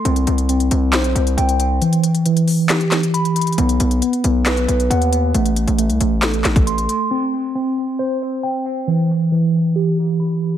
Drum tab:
HH |x-x-x-x-x-x-x---x-x-x-x-x-x-x---|x-x-x-x-x-x-o---x-x-x-x-x-x-xxxx|x-x-x-x-x-x-x---x-x-x-x-x-x-x---|x-x-x-x-x-x-x---x-x-x-x-x-x-x---|
CP |----------------x---------------|----------------x---x-----------|----------------x---------------|----------------x---x-----------|
SD |----------------o---------------|----------------o---o-----------|----------------o---------------|----------------o---o-----------|
BD |--------------------------------|--------------------------------|--------------------------------|----------------------o---------|

HH |--------------------------------|--------------------------------|
CP |--------------------------------|--------------------------------|
SD |--------------------------------|--------------------------------|
BD |--------------------------------|--------------------------------|